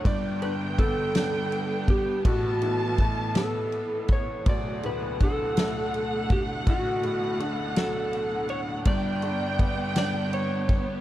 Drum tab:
RD |xxxxxx|xxxxxx|xxxxxx|xxxxxx|
SD |---o--|---o--|---o--|---o--|
BD |o-o--o|o-o--o|o-o--o|o-----|

RD |xxxxxx|
SD |---o--|
BD |o-o--o|